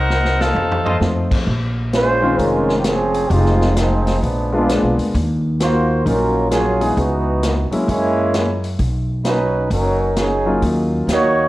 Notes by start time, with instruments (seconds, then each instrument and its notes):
Already playing: upright bass C2, saxophone section D#4 A#4 C5 F#5
0.10 snare
0.25 snare
0.41 saxophone section D#4 A4 C5 F5, snare
0.55 upright bass F2, floor tom
0.72 floor tom
0.85 trumpet section F4 C5 D#5 C6, floor tom
1.00 upright bass F2, grand piano F3 A3 C4 D#4 F4, snare
1.31 kick, crash
1.47 upright bass A#1, kick
1.93 trombone section G#3 C#4 F4 C5, snare, closed hi-hat
2.22 grand piano D#3 G#3 C4 C#4 F4
2.38 upright bass F1, trombone section G#3 C#4 F4 A#4, kick, open hi-hat
2.69 snare
2.80 trombone section G4
2.84 trombone section F3 C4 C#4 G#4, snare, closed hi-hat
3.14 open hi-hat
3.29 upright bass F1, grand piano F3 G#3 C4 D#4 G4, trombone section G#3 C4 D#4 F4, kick, open hi-hat
3.46 snare
3.61 snare
3.76 trombone section F3 G#3 C4 D#4, snare, closed hi-hat
4.07 snare, open hi-hat
4.21 upright bass A#1, trombone section F3 G#3 B3 D4, kick, open hi-hat
4.52 grand piano G#3 A#3 B3 D4 F4, trombone section G#3 B3 D4 F4
4.69 snare, closed hi-hat
4.83 upright bass B1
4.97 upright bass D2, open hi-hat
5.15 upright bass D#2, kick, open hi-hat
5.60 trombone section A#3 F4 F#4 C5, snare, closed hi-hat
6.05 upright bass A#1, grand piano F#3 A#3 C#4 D#4 F4, trombone section F#3 C#4 F4 A#4, kick, open hi-hat
6.51 trombone section F#3 C#4 F4 G#4, snare, closed hi-hat
6.81 grand piano E3 G#3 B3 D#4 G#4, open hi-hat
6.97 upright bass C#2, trombone section E3 B3 D#4 F#4, kick, open hi-hat
7.43 snare, closed hi-hat
7.71 grand piano F#3 G#3 A#3 C#4 E4, muted upright bass stroke, open hi-hat
7.88 upright bass F#2, trombone section G#3 A#3 C#4 E4, kick, open hi-hat
8.34 snare, closed hi-hat
8.64 open hi-hat
8.79 upright bass B1, kick, open hi-hat
9.25 trombone section F#3 C#4 D#4 B4, snare, closed hi-hat
9.70 upright bass F#1, trombone section F#3 C#4 D#4 A#4, kick, open hi-hat
10.17 trombone section F#3 C#4 D#4 G#4, snare, closed hi-hat
10.46 grand piano F#3 A#3 C#4 D#4 F4
10.62 upright bass D#2, kick, open hi-hat
11.07 upright bass D#2, snare, closed hi-hat
11.12 trombone section A#3 D#4 F#4 C#5